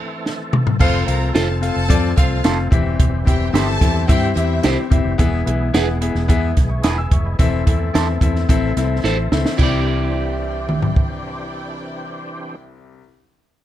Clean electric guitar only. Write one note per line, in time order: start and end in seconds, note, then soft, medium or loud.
1.35 1.47 F4 medium
1.35 1.47 A4 medium
1.35 1.48 C5 medium
2.44 2.57 F4 medium
2.44 2.57 A4 medium
2.44 2.57 C5 medium
3.54 3.66 E4 medium
3.54 3.66 G4 medium
3.54 3.67 C5 medium
4.65 4.77 E4 medium
4.65 4.77 G4 medium
4.65 4.77 C5 medium
5.74 5.86 E4 medium
5.74 5.87 G#4 medium
5.74 5.87 B4 medium
6.84 6.96 E4 medium
6.84 6.96 G#4 medium
6.84 6.97 B4 loud
7.94 8.06 E4 medium
7.94 8.07 A4 medium
7.94 8.07 C5 medium
9.04 9.16 E4 medium
9.04 9.16 A4 medium
9.04 9.17 C5 medium
9.58 13.08 E4 medium
9.58 13.11 G4 medium
9.63 13.13 D5 medium